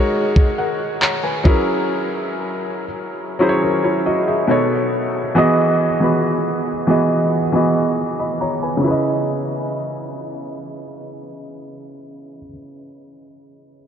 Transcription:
0.00 1.48 G#3 medium
0.00 1.47 D#4 medium
0.00 1.48 F#4 medium
0.00 0.59 A#4 medium
0.00 0.44 C#5 loud
0.00 1.47 D#5 medium
0.36 kick loud
0.58 1.00 A#4 medium
0.58 1.00 F#5 medium
1.01 1.23 C#5 medium
1.01 1.22 A#5 medium
1.01 clap loud
1.24 1.65 B4 medium
1.24 1.65 G#5 medium
1.43 2.83 F#3 medium
1.43 2.84 C#4 medium
1.43 2.84 E4 medium
1.43 2.85 G#4 medium
1.43 2.85 A#4 loud
1.43 kick loud
3.39 4.49 F#3 medium
3.39 3.62 C#4 medium
3.39 3.63 E4 medium
3.39 3.63 G#4 medium
3.39 3.48 C5 medium
3.49 3.67 C#5 loud
3.62 3.84 C#4 medium
3.62 3.83 A#4 medium
3.84 4.05 E4 medium
3.84 4.05 C#5 medium
4.06 4.27 F#4 medium
4.06 4.27 D#5 medium
4.28 4.69 G#4 medium
4.28 4.69 E5 medium
4.47 5.18 B2 medium
4.47 5.19 B3 medium
4.47 5.19 D#4 medium
4.47 5.20 A4 medium
4.47 5.20 C#5 loud
5.35 5.86 E3 loud
5.35 5.87 B3 loud
5.35 5.87 F#4 loud
5.35 5.88 G#4 loud
5.35 5.88 D#5 loud
6.00 6.68 E3 medium
6.00 6.69 B3 medium
6.00 6.69 F#4 medium
6.00 6.70 G#4 medium
6.00 6.70 B4 medium
6.87 7.38 E3 medium
6.87 7.39 B3 medium
6.87 7.39 F#4 medium
6.87 7.40 G#4 medium
6.87 7.40 D#5 medium
7.52 8.54 E3 medium
7.52 8.55 B3 medium
7.52 8.55 F#4 medium
7.52 8.56 G#4 medium
7.52 7.98 D#5 medium
8.19 8.40 D#5 medium
8.19 8.40 B5 medium
8.41 8.62 C#5 medium
8.41 8.62 A#5 medium
8.63 8.86 B4 soft
8.63 9.04 G#5 medium
8.77 12.38 C#3 medium
8.77 12.42 C#4 medium
8.84 12.45 E4 medium
8.84 12.49 B4 medium
8.91 12.52 D#5 medium

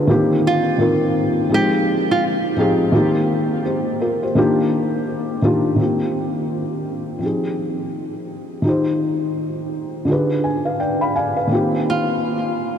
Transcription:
0.00 0.10 D3 medium
0.00 0.11 D4 medium
0.00 0.10 F4 medium
0.00 0.10 G4 medium
0.00 0.11 G#4 medium
0.00 0.11 B4 loud
0.07 0.75 D#3 medium
0.07 0.76 A#3 medium
0.07 0.76 C4 medium
0.07 0.77 F4 medium
0.07 0.77 G4 medium
0.47 0.99 F4 medium
0.78 1.50 D#3 medium
0.78 1.51 A#3 medium
0.78 1.49 C4 medium
0.78 1.52 F4 medium
0.78 1.52 A#4 medium
1.49 2.52 F3 medium
1.49 2.54 G#3 medium
1.49 2.52 C4 medium
1.49 2.53 D#4 medium
1.49 2.53 G4 medium
1.54 2.06 G4 medium
2.11 2.23 F4 medium
2.57 2.91 F3 medium
2.57 2.92 C4 medium
2.57 2.92 D#4 medium
2.57 2.93 G4 medium
2.57 2.93 G#4 medium
2.92 3.61 D#3 medium
2.92 3.61 A#3 medium
2.92 3.62 C4 medium
2.92 3.62 F4 medium
2.92 3.63 G4 medium
3.66 4.00 G4 medium
3.66 4.00 C5 medium
4.02 4.22 F4 medium
4.02 4.22 A#4 medium
4.23 4.37 G4 medium
4.23 4.57 C5 medium
4.35 5.38 D#3 medium
4.35 5.38 A#3 medium
4.35 5.38 D4 medium
4.35 5.39 F4 medium
4.35 5.39 G4 loud
5.42 5.75 D#3 medium
5.42 5.76 A#3 medium
5.42 5.78 D4 medium
5.42 5.78 F4 medium
5.42 5.79 G4 medium
5.76 7.18 D#3 medium
5.76 7.19 A#3 medium
5.76 7.19 C4 medium
5.81 7.21 F4 medium
5.81 7.22 G4 medium
7.19 8.61 F3 medium
7.19 8.62 C4 soft
7.19 8.62 D#4 soft
7.24 8.64 G4 soft
7.24 8.64 G#4 medium
8.62 10.04 D#3 medium
8.62 10.05 D#4 medium
8.62 10.06 F4 medium
8.67 10.06 G4 medium
8.67 10.07 C5 medium
10.05 11.47 D3 medium
10.05 11.47 D4 medium
10.05 11.48 F4 medium
10.09 11.49 G4 medium
10.09 11.50 G#4 medium
10.09 10.45 B4 medium
10.44 10.77 G#5 medium
10.65 10.79 B4 soft
10.65 10.79 F5 medium
10.80 11.00 D5 medium
10.80 11.13 G5 medium
11.01 11.14 F5 medium
11.01 11.15 B5 medium
11.16 11.36 D5 medium
11.16 11.35 F5 medium
11.16 11.36 G#5 medium
11.36 11.71 B4 soft
11.36 11.71 F5 medium
11.47 12.78 D#3 medium
11.47 12.78 A#3 medium
11.47 12.78 C4 medium
11.53 12.78 F4 medium
11.53 12.78 G4 medium
11.90 12.42 F4 medium

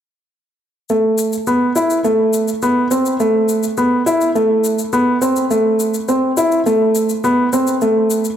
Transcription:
0.89 1.33 A3 medium
0.89 shaker soft
1.18 shaker medium
1.33 shaker soft
1.47 1.69 B3 medium
1.47 shaker soft
1.76 1.98 E4 medium
1.76 shaker medium
1.90 shaker soft
2.04 2.48 A3 medium
2.04 shaker soft
2.33 shaker medium
2.48 shaker soft
2.62 2.84 B3 medium
2.62 shaker soft
2.91 3.13 C4 medium
2.91 shaker medium
3.06 shaker soft
3.20 3.64 A3 medium
3.20 shaker soft
3.49 shaker medium
3.63 shaker soft
3.77 3.99 B3 medium
3.77 shaker soft
4.06 4.28 E4 medium
4.06 shaker medium
4.21 shaker soft
4.35 4.79 A3 medium
4.35 shaker soft
4.64 shaker medium
4.79 shaker soft
4.93 5.15 B3 medium
4.93 shaker soft
5.22 5.44 C4 medium
5.22 shaker medium
5.36 shaker soft
5.51 5.94 A3 medium
5.51 shaker soft
5.80 shaker medium
5.94 shaker soft
6.08 6.30 C4 medium
6.08 shaker soft
6.37 6.59 E4 medium
6.37 shaker medium
6.52 shaker soft
6.66 7.10 A3 medium
6.66 shaker soft
6.95 shaker medium
7.09 shaker soft
7.24 7.46 B3 medium
7.24 shaker soft
7.53 7.75 C4 medium
7.53 shaker medium
7.67 shaker soft
7.81 8.25 A3 medium
7.81 shaker soft
8.10 shaker medium
8.25 shaker soft

